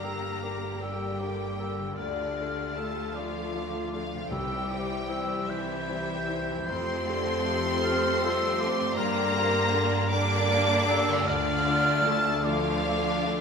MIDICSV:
0, 0, Header, 1, 12, 480
1, 0, Start_track
1, 0, Tempo, 778210
1, 1218, Time_signature, 6, 3, 24, 8
1, 3136, Tempo, 797872
1, 4096, Tempo, 760456
1, 6496, Tempo, 790514
1, 8272, End_track
2, 0, Start_track
2, 0, Title_t, "Flute"
2, 0, Program_c, 0, 73
2, 20, Note_on_c, 0, 88, 58
2, 252, Note_off_c, 0, 88, 0
2, 256, Note_on_c, 0, 86, 57
2, 492, Note_off_c, 0, 86, 0
2, 500, Note_on_c, 0, 88, 62
2, 732, Note_on_c, 0, 86, 55
2, 741, Note_off_c, 0, 88, 0
2, 970, Note_off_c, 0, 86, 0
2, 973, Note_on_c, 0, 88, 63
2, 1211, Note_on_c, 0, 89, 80
2, 1221, Note_off_c, 0, 88, 0
2, 1944, Note_on_c, 0, 86, 66
2, 1954, Note_off_c, 0, 89, 0
2, 2513, Note_off_c, 0, 86, 0
2, 2657, Note_on_c, 0, 88, 76
2, 2903, Note_on_c, 0, 86, 72
2, 2912, Note_off_c, 0, 88, 0
2, 3138, Note_on_c, 0, 88, 82
2, 3147, Note_off_c, 0, 86, 0
2, 3384, Note_on_c, 0, 91, 90
2, 3393, Note_off_c, 0, 88, 0
2, 4654, Note_off_c, 0, 91, 0
2, 4823, Note_on_c, 0, 89, 88
2, 5072, Note_on_c, 0, 88, 83
2, 5081, Note_off_c, 0, 89, 0
2, 5308, Note_on_c, 0, 86, 84
2, 5318, Note_off_c, 0, 88, 0
2, 5543, Note_off_c, 0, 86, 0
2, 5547, Note_on_c, 0, 84, 109
2, 6258, Note_on_c, 0, 82, 86
2, 6268, Note_off_c, 0, 84, 0
2, 6498, Note_on_c, 0, 86, 87
2, 6507, Note_off_c, 0, 82, 0
2, 6739, Note_on_c, 0, 88, 98
2, 6748, Note_off_c, 0, 86, 0
2, 6968, Note_on_c, 0, 89, 116
2, 6977, Note_off_c, 0, 88, 0
2, 7686, Note_on_c, 0, 86, 92
2, 7695, Note_off_c, 0, 89, 0
2, 8272, Note_off_c, 0, 86, 0
2, 8272, End_track
3, 0, Start_track
3, 0, Title_t, "Violin section"
3, 0, Program_c, 1, 48
3, 0, Note_on_c, 1, 82, 91
3, 498, Note_on_c, 1, 79, 86
3, 499, Note_off_c, 1, 82, 0
3, 1212, Note_on_c, 1, 74, 82
3, 1218, Note_off_c, 1, 79, 0
3, 1692, Note_off_c, 1, 74, 0
3, 1700, Note_on_c, 1, 81, 79
3, 1934, Note_on_c, 1, 77, 83
3, 1943, Note_off_c, 1, 81, 0
3, 2407, Note_off_c, 1, 77, 0
3, 2415, Note_on_c, 1, 77, 87
3, 2652, Note_off_c, 1, 77, 0
3, 2653, Note_on_c, 1, 79, 101
3, 3366, Note_on_c, 1, 76, 94
3, 3370, Note_off_c, 1, 79, 0
3, 4091, Note_on_c, 1, 84, 122
3, 4095, Note_off_c, 1, 76, 0
3, 5516, Note_off_c, 1, 84, 0
3, 5539, Note_on_c, 1, 82, 127
3, 6250, Note_off_c, 1, 82, 0
3, 6250, Note_on_c, 1, 86, 127
3, 6956, Note_off_c, 1, 86, 0
3, 6959, Note_on_c, 1, 74, 113
3, 7436, Note_off_c, 1, 74, 0
3, 7442, Note_on_c, 1, 81, 115
3, 7674, Note_on_c, 1, 77, 117
3, 7680, Note_off_c, 1, 81, 0
3, 8272, Note_off_c, 1, 77, 0
3, 8272, End_track
4, 0, Start_track
4, 0, Title_t, "Clarinet"
4, 0, Program_c, 2, 71
4, 0, Note_on_c, 2, 70, 78
4, 499, Note_on_c, 2, 67, 71
4, 508, Note_off_c, 2, 70, 0
4, 1215, Note_off_c, 2, 67, 0
4, 1219, Note_on_c, 2, 62, 75
4, 1695, Note_off_c, 2, 62, 0
4, 1705, Note_on_c, 2, 69, 72
4, 1940, Note_on_c, 2, 65, 72
4, 1950, Note_off_c, 2, 69, 0
4, 2417, Note_off_c, 2, 65, 0
4, 2422, Note_on_c, 2, 65, 74
4, 2668, Note_on_c, 2, 67, 91
4, 2677, Note_off_c, 2, 65, 0
4, 3209, Note_off_c, 2, 67, 0
4, 3372, Note_on_c, 2, 64, 88
4, 4096, Note_on_c, 2, 72, 106
4, 4105, Note_off_c, 2, 64, 0
4, 5544, Note_on_c, 2, 70, 120
4, 5553, Note_off_c, 2, 72, 0
4, 6247, Note_off_c, 2, 70, 0
4, 6250, Note_on_c, 2, 74, 122
4, 6968, Note_on_c, 2, 62, 107
4, 6978, Note_off_c, 2, 74, 0
4, 7445, Note_on_c, 2, 69, 100
4, 7454, Note_off_c, 2, 62, 0
4, 7683, Note_on_c, 2, 65, 101
4, 7692, Note_off_c, 2, 69, 0
4, 8244, Note_off_c, 2, 65, 0
4, 8272, End_track
5, 0, Start_track
5, 0, Title_t, "Grand piano"
5, 0, Program_c, 3, 0
5, 0, Control_c, 3, 64, 127
5, 0, Note_on_c, 3, 43, 56
5, 24, Note_on_c, 3, 62, 36
5, 24, Note_on_c, 3, 67, 38
5, 29, Note_on_c, 3, 70, 46
5, 239, Note_off_c, 3, 62, 0
5, 239, Note_off_c, 3, 67, 0
5, 241, Note_off_c, 3, 70, 0
5, 261, Note_on_c, 3, 62, 40
5, 262, Note_on_c, 3, 67, 43
5, 266, Note_on_c, 3, 70, 45
5, 476, Note_off_c, 3, 62, 0
5, 477, Note_off_c, 3, 67, 0
5, 479, Note_off_c, 3, 70, 0
5, 500, Note_on_c, 3, 62, 42
5, 504, Note_on_c, 3, 70, 46
5, 505, Note_on_c, 3, 67, 43
5, 714, Note_off_c, 3, 62, 0
5, 716, Note_off_c, 3, 67, 0
5, 716, Note_off_c, 3, 70, 0
5, 739, Note_on_c, 3, 62, 42
5, 742, Note_on_c, 3, 67, 39
5, 743, Note_on_c, 3, 70, 45
5, 953, Note_off_c, 3, 62, 0
5, 955, Note_off_c, 3, 67, 0
5, 956, Note_off_c, 3, 70, 0
5, 980, Note_on_c, 3, 62, 44
5, 983, Note_on_c, 3, 67, 39
5, 984, Note_on_c, 3, 70, 46
5, 1196, Note_off_c, 3, 62, 0
5, 1198, Note_off_c, 3, 67, 0
5, 1198, Note_off_c, 3, 70, 0
5, 1225, Note_on_c, 3, 38, 55
5, 1228, Control_c, 3, 64, 0
5, 1234, Note_off_c, 3, 43, 0
5, 1313, Control_c, 3, 64, 127
5, 1458, Note_off_c, 3, 38, 0
5, 1466, Note_on_c, 3, 62, 44
5, 1469, Note_on_c, 3, 65, 38
5, 1472, Note_on_c, 3, 69, 44
5, 1683, Note_off_c, 3, 62, 0
5, 1685, Note_off_c, 3, 65, 0
5, 1686, Note_off_c, 3, 69, 0
5, 1710, Note_on_c, 3, 62, 44
5, 1712, Note_on_c, 3, 65, 46
5, 1714, Note_on_c, 3, 69, 50
5, 1924, Note_off_c, 3, 62, 0
5, 1925, Note_off_c, 3, 65, 0
5, 1926, Note_off_c, 3, 69, 0
5, 1950, Note_on_c, 3, 62, 48
5, 1953, Note_on_c, 3, 65, 45
5, 1955, Note_on_c, 3, 69, 46
5, 2161, Note_off_c, 3, 62, 0
5, 2163, Note_off_c, 3, 65, 0
5, 2164, Note_off_c, 3, 69, 0
5, 2183, Note_on_c, 3, 62, 46
5, 2186, Note_on_c, 3, 65, 51
5, 2190, Note_on_c, 3, 69, 50
5, 2397, Note_off_c, 3, 62, 0
5, 2398, Note_off_c, 3, 65, 0
5, 2400, Note_off_c, 3, 69, 0
5, 2422, Note_on_c, 3, 62, 46
5, 2425, Note_on_c, 3, 65, 45
5, 2427, Note_on_c, 3, 69, 47
5, 2637, Note_off_c, 3, 62, 0
5, 2638, Note_off_c, 3, 65, 0
5, 2639, Note_off_c, 3, 69, 0
5, 2661, Note_on_c, 3, 36, 63
5, 2671, Control_c, 3, 64, 0
5, 2783, Control_c, 3, 64, 127
5, 2892, Note_off_c, 3, 36, 0
5, 2897, Note_on_c, 3, 64, 49
5, 2899, Note_on_c, 3, 67, 48
5, 2902, Note_on_c, 3, 72, 48
5, 3113, Note_off_c, 3, 64, 0
5, 3114, Note_off_c, 3, 67, 0
5, 3116, Note_off_c, 3, 72, 0
5, 3138, Note_on_c, 3, 64, 54
5, 3139, Note_on_c, 3, 67, 54
5, 3141, Note_on_c, 3, 72, 54
5, 3350, Note_off_c, 3, 64, 0
5, 3350, Note_off_c, 3, 67, 0
5, 3352, Note_off_c, 3, 72, 0
5, 3375, Note_on_c, 3, 64, 48
5, 3377, Note_on_c, 3, 67, 52
5, 3379, Note_on_c, 3, 72, 56
5, 3590, Note_off_c, 3, 64, 0
5, 3592, Note_off_c, 3, 67, 0
5, 3593, Note_off_c, 3, 72, 0
5, 3614, Note_on_c, 3, 64, 53
5, 3616, Note_on_c, 3, 67, 52
5, 3619, Note_on_c, 3, 72, 60
5, 3834, Note_off_c, 3, 64, 0
5, 3835, Note_off_c, 3, 67, 0
5, 3836, Note_off_c, 3, 72, 0
5, 3856, Note_on_c, 3, 64, 51
5, 3860, Note_on_c, 3, 67, 50
5, 3862, Note_on_c, 3, 72, 61
5, 4073, Note_off_c, 3, 64, 0
5, 4075, Note_off_c, 3, 67, 0
5, 4076, Note_off_c, 3, 72, 0
5, 4100, Note_on_c, 3, 41, 75
5, 4110, Control_c, 3, 64, 0
5, 4230, Control_c, 3, 64, 127
5, 4334, Note_off_c, 3, 41, 0
5, 4337, Note_on_c, 3, 65, 55
5, 4340, Note_on_c, 3, 67, 56
5, 4342, Note_on_c, 3, 69, 54
5, 4554, Note_off_c, 3, 65, 0
5, 4555, Note_off_c, 3, 67, 0
5, 4556, Note_off_c, 3, 69, 0
5, 4578, Note_on_c, 3, 67, 65
5, 4579, Note_on_c, 3, 65, 63
5, 4582, Note_on_c, 3, 69, 67
5, 4795, Note_off_c, 3, 67, 0
5, 4796, Note_off_c, 3, 65, 0
5, 4798, Note_off_c, 3, 69, 0
5, 4819, Note_on_c, 3, 65, 58
5, 4822, Note_on_c, 3, 67, 59
5, 4824, Note_on_c, 3, 69, 66
5, 5037, Note_off_c, 3, 65, 0
5, 5039, Note_off_c, 3, 67, 0
5, 5040, Note_off_c, 3, 69, 0
5, 5068, Note_on_c, 3, 65, 67
5, 5071, Note_on_c, 3, 67, 60
5, 5072, Note_on_c, 3, 69, 64
5, 5283, Note_off_c, 3, 65, 0
5, 5285, Note_off_c, 3, 67, 0
5, 5285, Note_off_c, 3, 69, 0
5, 5307, Note_on_c, 3, 65, 61
5, 5308, Note_on_c, 3, 67, 64
5, 5312, Note_on_c, 3, 69, 65
5, 5523, Note_off_c, 3, 65, 0
5, 5523, Note_off_c, 3, 67, 0
5, 5525, Note_off_c, 3, 69, 0
5, 5547, Note_on_c, 3, 43, 85
5, 5556, Control_c, 3, 64, 0
5, 5655, Control_c, 3, 64, 127
5, 5776, Note_off_c, 3, 43, 0
5, 5791, Note_on_c, 3, 62, 64
5, 5795, Note_on_c, 3, 67, 62
5, 5796, Note_on_c, 3, 70, 64
5, 5997, Note_off_c, 3, 62, 0
5, 5999, Note_off_c, 3, 67, 0
5, 6000, Note_off_c, 3, 70, 0
5, 6023, Note_on_c, 3, 62, 66
5, 6024, Note_on_c, 3, 67, 69
5, 6028, Note_on_c, 3, 70, 70
5, 6234, Note_off_c, 3, 62, 0
5, 6234, Note_off_c, 3, 67, 0
5, 6236, Note_off_c, 3, 70, 0
5, 6264, Note_on_c, 3, 62, 65
5, 6267, Note_on_c, 3, 67, 63
5, 6269, Note_on_c, 3, 70, 71
5, 6478, Note_off_c, 3, 62, 0
5, 6479, Note_off_c, 3, 67, 0
5, 6481, Note_off_c, 3, 70, 0
5, 6505, Note_on_c, 3, 62, 67
5, 6508, Note_on_c, 3, 67, 68
5, 6510, Note_on_c, 3, 70, 71
5, 6715, Note_off_c, 3, 62, 0
5, 6716, Note_off_c, 3, 67, 0
5, 6717, Note_off_c, 3, 70, 0
5, 6738, Note_on_c, 3, 62, 69
5, 6741, Note_on_c, 3, 67, 64
5, 6742, Note_on_c, 3, 70, 66
5, 6950, Note_off_c, 3, 62, 0
5, 6952, Note_off_c, 3, 67, 0
5, 6952, Note_off_c, 3, 70, 0
5, 6977, Note_on_c, 3, 38, 85
5, 6982, Control_c, 3, 64, 0
5, 7072, Control_c, 3, 64, 127
5, 7203, Note_off_c, 3, 38, 0
5, 7215, Note_on_c, 3, 62, 58
5, 7216, Note_on_c, 3, 65, 64
5, 7220, Note_on_c, 3, 69, 63
5, 7423, Note_off_c, 3, 62, 0
5, 7424, Note_off_c, 3, 65, 0
5, 7425, Note_off_c, 3, 69, 0
5, 7440, Note_on_c, 3, 62, 65
5, 7442, Note_on_c, 3, 65, 61
5, 7445, Note_on_c, 3, 69, 73
5, 7655, Note_off_c, 3, 62, 0
5, 7656, Note_off_c, 3, 65, 0
5, 7658, Note_off_c, 3, 69, 0
5, 7682, Note_on_c, 3, 62, 58
5, 7684, Note_on_c, 3, 65, 60
5, 7685, Note_on_c, 3, 69, 64
5, 7900, Note_off_c, 3, 62, 0
5, 7900, Note_off_c, 3, 65, 0
5, 7901, Note_off_c, 3, 69, 0
5, 7919, Note_on_c, 3, 62, 63
5, 7923, Note_on_c, 3, 65, 57
5, 7925, Note_on_c, 3, 69, 60
5, 8145, Note_off_c, 3, 62, 0
5, 8147, Note_off_c, 3, 65, 0
5, 8148, Note_off_c, 3, 69, 0
5, 8167, Note_on_c, 3, 62, 54
5, 8168, Note_on_c, 3, 65, 55
5, 8171, Note_on_c, 3, 69, 64
5, 8272, Note_off_c, 3, 62, 0
5, 8272, Note_off_c, 3, 65, 0
5, 8272, Note_off_c, 3, 69, 0
5, 8272, End_track
6, 0, Start_track
6, 0, Title_t, "Harp"
6, 0, Program_c, 4, 46
6, 0, Note_on_c, 4, 43, 48
6, 0, Note_on_c, 4, 58, 39
6, 0, Note_on_c, 4, 67, 41
6, 0, Note_on_c, 4, 74, 35
6, 1108, Note_on_c, 4, 50, 49
6, 1137, Note_on_c, 4, 57, 41
6, 1165, Note_on_c, 4, 65, 40
6, 1184, Note_off_c, 4, 43, 0
6, 1185, Note_off_c, 4, 74, 0
6, 1192, Note_on_c, 4, 74, 42
6, 1197, Note_off_c, 4, 58, 0
6, 1210, Note_off_c, 4, 67, 0
6, 2545, Note_on_c, 4, 48, 54
6, 2573, Note_on_c, 4, 60, 44
6, 2599, Note_on_c, 4, 67, 47
6, 2623, Note_off_c, 4, 50, 0
6, 2629, Note_on_c, 4, 76, 48
6, 2638, Note_off_c, 4, 57, 0
6, 2652, Note_off_c, 4, 65, 0
6, 2666, Note_off_c, 4, 74, 0
6, 3985, Note_on_c, 4, 41, 61
6, 4014, Note_on_c, 4, 57, 53
6, 4032, Note_off_c, 4, 67, 0
6, 4039, Note_on_c, 4, 67, 55
6, 4061, Note_off_c, 4, 48, 0
6, 4066, Note_on_c, 4, 77, 51
6, 4102, Note_off_c, 4, 76, 0
6, 4974, Note_off_c, 4, 60, 0
6, 5433, Note_on_c, 4, 43, 74
6, 5460, Note_on_c, 4, 58, 61
6, 5479, Note_off_c, 4, 67, 0
6, 5487, Note_on_c, 4, 67, 56
6, 5505, Note_off_c, 4, 41, 0
6, 5517, Note_on_c, 4, 74, 59
6, 5520, Note_off_c, 4, 57, 0
6, 5548, Note_off_c, 4, 77, 0
6, 6861, Note_on_c, 4, 50, 74
6, 6888, Note_on_c, 4, 57, 63
6, 6914, Note_on_c, 4, 65, 61
6, 6936, Note_off_c, 4, 43, 0
6, 6943, Note_on_c, 4, 77, 63
6, 6950, Note_off_c, 4, 58, 0
6, 6962, Note_off_c, 4, 67, 0
6, 7922, Note_off_c, 4, 74, 0
6, 8272, Note_off_c, 4, 50, 0
6, 8272, Note_off_c, 4, 57, 0
6, 8272, Note_off_c, 4, 65, 0
6, 8272, Note_off_c, 4, 77, 0
6, 8272, End_track
7, 0, Start_track
7, 0, Title_t, "Violin section"
7, 0, Program_c, 5, 48
7, 0, Note_on_c, 5, 58, 53
7, 0, Note_on_c, 5, 67, 53
7, 1193, Note_off_c, 5, 58, 0
7, 1196, Note_off_c, 5, 67, 0
7, 1216, Note_on_c, 5, 65, 61
7, 1217, Note_on_c, 5, 57, 59
7, 2634, Note_off_c, 5, 65, 0
7, 2659, Note_off_c, 5, 57, 0
7, 2664, Note_on_c, 5, 67, 59
7, 2668, Note_on_c, 5, 60, 61
7, 4076, Note_off_c, 5, 67, 0
7, 4078, Note_off_c, 5, 60, 0
7, 4095, Note_on_c, 5, 60, 73
7, 4095, Note_on_c, 5, 69, 74
7, 4794, Note_off_c, 5, 60, 0
7, 4823, Note_on_c, 5, 57, 80
7, 5519, Note_off_c, 5, 69, 0
7, 5546, Note_on_c, 5, 62, 81
7, 5547, Note_off_c, 5, 57, 0
7, 5547, Note_on_c, 5, 67, 82
7, 5777, Note_off_c, 5, 62, 0
7, 5778, Note_on_c, 5, 60, 82
7, 6014, Note_off_c, 5, 60, 0
7, 6020, Note_on_c, 5, 62, 91
7, 6240, Note_off_c, 5, 67, 0
7, 6254, Note_on_c, 5, 58, 81
7, 6255, Note_off_c, 5, 62, 0
7, 6256, Note_on_c, 5, 67, 80
7, 6958, Note_off_c, 5, 67, 0
7, 6964, Note_on_c, 5, 62, 89
7, 6965, Note_on_c, 5, 65, 90
7, 6972, Note_off_c, 5, 58, 0
7, 7652, Note_off_c, 5, 62, 0
7, 7652, Note_off_c, 5, 65, 0
7, 7683, Note_on_c, 5, 65, 75
7, 7685, Note_on_c, 5, 62, 81
7, 8272, Note_off_c, 5, 62, 0
7, 8272, Note_off_c, 5, 65, 0
7, 8272, End_track
8, 0, Start_track
8, 0, Title_t, "French horn section"
8, 0, Program_c, 6, 60
8, 0, Note_on_c, 6, 58, 62
8, 0, Note_on_c, 6, 67, 65
8, 1220, Note_on_c, 6, 57, 75
8, 1221, Note_off_c, 6, 58, 0
8, 1922, Note_off_c, 6, 67, 0
8, 1945, Note_on_c, 6, 65, 65
8, 2659, Note_off_c, 6, 65, 0
8, 2660, Note_off_c, 6, 57, 0
8, 2662, Note_on_c, 6, 64, 76
8, 2664, Note_on_c, 6, 55, 80
8, 3998, Note_off_c, 6, 55, 0
8, 3998, Note_off_c, 6, 64, 0
8, 4101, Note_on_c, 6, 57, 82
8, 4101, Note_on_c, 6, 67, 92
8, 5521, Note_off_c, 6, 67, 0
8, 5547, Note_off_c, 6, 57, 0
8, 5547, Note_on_c, 6, 62, 101
8, 5548, Note_on_c, 6, 58, 107
8, 6948, Note_off_c, 6, 58, 0
8, 6975, Note_on_c, 6, 57, 104
8, 8272, Note_off_c, 6, 57, 0
8, 8272, Note_off_c, 6, 62, 0
8, 8272, End_track
9, 0, Start_track
9, 0, Title_t, "Cello section"
9, 0, Program_c, 7, 48
9, 0, Note_on_c, 7, 58, 71
9, 502, Note_off_c, 7, 58, 0
9, 506, Note_on_c, 7, 55, 66
9, 1220, Note_on_c, 7, 50, 65
9, 1221, Note_off_c, 7, 55, 0
9, 1696, Note_off_c, 7, 50, 0
9, 1706, Note_on_c, 7, 57, 69
9, 1941, Note_off_c, 7, 57, 0
9, 1948, Note_on_c, 7, 53, 73
9, 2412, Note_off_c, 7, 53, 0
9, 2419, Note_on_c, 7, 53, 71
9, 2654, Note_off_c, 7, 53, 0
9, 2661, Note_on_c, 7, 55, 84
9, 3373, Note_on_c, 7, 52, 78
9, 3374, Note_off_c, 7, 55, 0
9, 4098, Note_off_c, 7, 52, 0
9, 4098, Note_on_c, 7, 60, 104
9, 5520, Note_off_c, 7, 60, 0
9, 5547, Note_on_c, 7, 58, 103
9, 6240, Note_off_c, 7, 58, 0
9, 6257, Note_on_c, 7, 62, 120
9, 6973, Note_off_c, 7, 62, 0
9, 6975, Note_on_c, 7, 50, 105
9, 7440, Note_on_c, 7, 57, 98
9, 7444, Note_off_c, 7, 50, 0
9, 7676, Note_on_c, 7, 53, 102
9, 7679, Note_off_c, 7, 57, 0
9, 8272, Note_off_c, 7, 53, 0
9, 8272, End_track
10, 0, Start_track
10, 0, Title_t, "Viola section"
10, 0, Program_c, 8, 48
10, 0, Note_on_c, 8, 50, 57
10, 0, Note_on_c, 8, 55, 51
10, 1195, Note_off_c, 8, 55, 0
10, 1219, Note_on_c, 8, 57, 55
10, 2635, Note_off_c, 8, 57, 0
10, 2637, Note_off_c, 8, 50, 0
10, 2659, Note_on_c, 8, 52, 66
10, 2659, Note_on_c, 8, 55, 71
10, 4074, Note_off_c, 8, 52, 0
10, 4074, Note_off_c, 8, 55, 0
10, 4096, Note_on_c, 8, 53, 75
10, 4097, Note_on_c, 8, 57, 75
10, 4323, Note_off_c, 8, 53, 0
10, 4341, Note_on_c, 8, 50, 85
10, 4578, Note_on_c, 8, 53, 81
10, 4580, Note_off_c, 8, 50, 0
10, 4794, Note_off_c, 8, 57, 0
10, 4813, Note_off_c, 8, 53, 0
10, 4821, Note_on_c, 8, 53, 88
10, 4821, Note_on_c, 8, 57, 91
10, 5058, Note_off_c, 8, 57, 0
10, 5063, Note_on_c, 8, 55, 81
10, 5301, Note_on_c, 8, 57, 85
10, 5305, Note_off_c, 8, 55, 0
10, 5531, Note_off_c, 8, 53, 0
10, 5544, Note_off_c, 8, 57, 0
10, 5546, Note_on_c, 8, 58, 87
10, 5547, Note_on_c, 8, 50, 91
10, 6240, Note_off_c, 8, 50, 0
10, 6247, Note_off_c, 8, 58, 0
10, 6254, Note_on_c, 8, 50, 97
10, 6255, Note_on_c, 8, 58, 97
10, 6958, Note_off_c, 8, 50, 0
10, 6958, Note_off_c, 8, 58, 0
10, 6970, Note_on_c, 8, 50, 88
10, 6971, Note_on_c, 8, 57, 90
10, 7655, Note_off_c, 8, 50, 0
10, 7655, Note_off_c, 8, 57, 0
10, 7675, Note_on_c, 8, 57, 91
10, 7676, Note_on_c, 8, 50, 89
10, 8272, Note_off_c, 8, 50, 0
10, 8272, Note_off_c, 8, 57, 0
10, 8272, End_track
11, 0, Start_track
11, 0, Title_t, "Timpani"
11, 0, Program_c, 10, 47
11, 2658, Note_on_c, 10, 48, 85
11, 3349, Note_off_c, 10, 48, 0
11, 8272, End_track
12, 0, Start_track
12, 0, Title_t, "Double bass section"
12, 0, Program_c, 11, 48
12, 0, Note_on_c, 11, 31, 63
12, 1194, Note_off_c, 11, 31, 0
12, 1214, Note_on_c, 11, 38, 64
12, 2633, Note_off_c, 11, 38, 0
12, 2653, Note_on_c, 11, 36, 72
12, 4071, Note_off_c, 11, 36, 0
12, 4095, Note_on_c, 11, 41, 85
12, 5518, Note_off_c, 11, 41, 0
12, 5545, Note_on_c, 11, 43, 101
12, 6947, Note_off_c, 11, 43, 0
12, 6971, Note_on_c, 11, 38, 99
12, 8272, Note_off_c, 11, 38, 0
12, 8272, End_track
0, 0, End_of_file